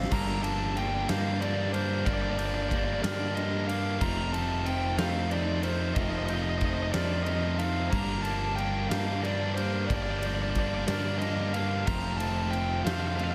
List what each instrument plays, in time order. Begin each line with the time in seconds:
Already playing: overdriven electric guitar C3 G3 C4, pedal steel guitar E3 C4, clean electric guitar E3 G3 D4, lead electric guitar F5, glockenspiel E6
0.03 snare
0.11 fingered electric bass G1, distorted electric guitar G2 D3 G3 A#3 D4, pedal steel guitar D3 G4 A#4 F5, lead electric guitar A#5, kick, crash
0.43 clean electric guitar F3, distorted electric guitar G3 A#3 D4, lead electric guitar A5, glockenspiel A6, ride
0.76 distorted electric guitar D3 G3 A#3 D4, lead electric guitar G5, ride
1.09 fingered electric bass G2, overdriven electric guitar G2 D3, distorted electric guitar G3 A#3 D4, clean electric guitar G4, lead electric guitar F5, glockenspiel G6, snare, ride
1.40 distorted electric guitar D3 G3 A#3 D4, lead electric guitar D5, ride
1.73 distorted electric guitar G3 A#3 D4, lead electric guitar C5, glockenspiel F6, ride
2.05 fingered electric bass G1, distorted electric guitar G2 D3 G3 A#3 D4, lead electric guitar D5, pedal steel guitar G5, kick, ride
2.14 lead electric guitar D5
2.22 lead electric guitar D5
2.30 lead electric guitar D5
2.39 clean electric guitar F3, distorted electric guitar G3 A#3 D4, lead electric guitar D5, glockenspiel G6, ride
2.46 lead electric guitar D5
2.54 lead electric guitar D5
2.63 lead electric guitar D5
2.69 distorted electric guitar D3, lead electric guitar D5, kick, ride
2.74 distorted electric guitar G3 A#3 D4
2.78 lead electric guitar D5
2.84 lead electric guitar D5
2.94 lead electric guitar D5
3.03 fingered electric bass G2, overdriven electric guitar G2 D3, distorted electric guitar A#3 D4, clean electric guitar G4, lead electric guitar D5, glockenspiel F6, snare, ride
3.07 distorted electric guitar G3
3.35 distorted electric guitar D3, overdriven electric guitar G3, lead electric guitar D#5, ride
3.39 distorted electric guitar G3 A#3 D4
3.67 distorted electric guitar A#3 D4, lead electric guitar F5, glockenspiel F6, ride
3.71 distorted electric guitar G3
4.01 fingered electric bass F1, distorted electric guitar F2 C3 F3 A3 C4, overdriven electric guitar D#3 D#4, pedal steel guitar A3 D#4 C5 F5, lead electric guitar A#5, kick, crash
4.33 overdriven electric guitar D#3 D#4, distorted electric guitar F3 A3 C4, lead electric guitar A5, glockenspiel A6, ride
4.66 distorted electric guitar C3 F3 A3 C4, lead electric guitar G5, ride
4.97 fingered electric bass F2, overdriven electric guitar F2 C3 D#3 D#4, distorted electric guitar A3 C4, clean electric guitar A4, lead electric guitar F5, glockenspiel G6, snare, ride
5.01 distorted electric guitar F3
5.31 distorted electric guitar C3 F3 A3 C4, overdriven electric guitar D#3 D#4, clean electric guitar D#4, lead electric guitar D5, ride
5.63 overdriven electric guitar D#3 D#4, distorted electric guitar A3 C4, lead electric guitar C5, glockenspiel F6, ride
5.67 distorted electric guitar F3
5.95 fingered electric bass F1, distorted electric guitar F2 C3 F3, overdriven electric guitar D#3 D#4, lead electric guitar D#5, pedal steel guitar F5, kick, ride
5.99 distorted electric guitar A3 C4, lead electric guitar D#5
6.10 lead electric guitar D#5
6.19 lead electric guitar D#5
6.26 distorted electric guitar C4, overdriven electric guitar D#4, lead electric guitar D#5, glockenspiel G6, ride
6.31 overdriven electric guitar D#3, distorted electric guitar F3 A3, lead electric guitar D#5
6.43 lead electric guitar D#5
6.50 lead electric guitar D#5
6.58 lead electric guitar D#5, kick, ride
6.63 distorted electric guitar C3 F3 A3 C4, lead electric guitar D#5
6.74 lead electric guitar D#5
6.83 lead electric guitar D#5
6.93 fingered electric bass F2, overdriven electric guitar F2 C3 D#3 D#4, distorted electric guitar A3 C4, clean electric guitar A4, lead electric guitar D5, glockenspiel F6, snare, ride
6.97 distorted electric guitar F3
7.24 distorted electric guitar C3, overdriven electric guitar D#3, lead electric guitar D#5, ride
7.28 distorted electric guitar F3 A3 C4, clean electric guitar D#4, overdriven electric guitar D#4
7.58 overdriven electric guitar D#3 D#4, distorted electric guitar F3 A3 C4, lead electric guitar F5, glockenspiel F6, ride
7.90 fingered electric bass G1, distorted electric guitar G2 D3 G3, lead electric guitar A#5, kick, crash
7.94 pedal steel guitar D3 G4 A#4 F5, distorted electric guitar A#3 D4
8.22 distorted electric guitar A#3 D4, lead electric guitar A5, glockenspiel A6, ride
8.26 clean electric guitar F3, distorted electric guitar G3
8.55 distorted electric guitar D3 G3, lead electric guitar G5, ride
8.60 distorted electric guitar A#3 D4
8.89 fingered electric bass G2, overdriven electric guitar G2 D3, distorted electric guitar A#3 D4, clean electric guitar A#4, lead electric guitar F5, glockenspiel G6, snare, ride
8.93 distorted electric guitar G3
9.23 distorted electric guitar D3 G3 A#3 D4, lead electric guitar D5, ride
9.54 distorted electric guitar A#3 D4, lead electric guitar C5, glockenspiel F6, ride
9.59 distorted electric guitar G3
9.87 fingered electric bass G1, distorted electric guitar G2 D3, lead electric guitar D5, pedal steel guitar G5, kick, ride
9.91 distorted electric guitar G3 A#3 D4, lead electric guitar D5
10.03 lead electric guitar D5
10.11 lead electric guitar D5
10.19 distorted electric guitar D4, lead electric guitar D5, ride
10.24 clean electric guitar F3, distorted electric guitar G3 A#3, lead electric guitar D5, glockenspiel G6
10.34 lead electric guitar D5
10.42 lead electric guitar D5
10.50 lead electric guitar D5
10.55 distorted electric guitar D3 G3 A#3 D4, kick, ride
10.59 lead electric guitar D5
10.67 lead electric guitar D5
10.75 lead electric guitar D5
10.87 fingered electric bass G2, overdriven electric guitar G2 D3, distorted electric guitar G3 A#3 D4, clean electric guitar A#4, lead electric guitar D5, glockenspiel F6, snare, ride
11.19 distorted electric guitar D3 G3 A#3, lead electric guitar D#5, ride
11.23 distorted electric guitar D4
11.53 distorted electric guitar G3 A#3 D4, lead electric guitar F5, glockenspiel F6, ride
11.86 fingered electric bass F1, distorted electric guitar F2 C3 F3 A3 C4, overdriven electric guitar D#3, pedal steel guitar A3 D#4 C5 F5, lead electric guitar A#5, kick, crash
12.18 distorted electric guitar F3 A3 C4, lead electric guitar A5, glockenspiel A6, ride
12.23 overdriven electric guitar D#3
12.51 distorted electric guitar C3 F3 A3 C4, lead electric guitar G5, ride
12.84 fingered electric bass F2, overdriven electric guitar F2 C3 D#3, distorted electric guitar F3 A3 C4, clean electric guitar A4, lead electric guitar F5, glockenspiel G6, snare, ride
12.92 lead electric guitar F5
13.01 lead electric guitar F5
13.08 lead electric guitar F5
13.17 distorted electric guitar C3 F3 A3 C4, overdriven electric guitar D#3, clean electric guitar D#4, lead electric guitar F5, ride
13.24 lead electric guitar F5
13.32 lead electric guitar F5